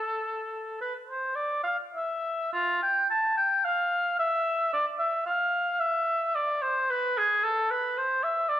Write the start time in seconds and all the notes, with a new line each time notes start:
Already playing: A4
0.81 B4
1.08 C5
1.36 D5
1.64 F5
1.94 E5
2.52 F4
2.83 G5
3.10 A5
3.37 G5
3.65 F5
4.19 E5
4.73 D5
4.98 E5
5.26 F5
5.80 E5
6.35 D5
6.62 C5
6.90 B4
7.18 G#4
7.44 A4
7.71 B4
7.98 C5
8.23 E5
8.49 D5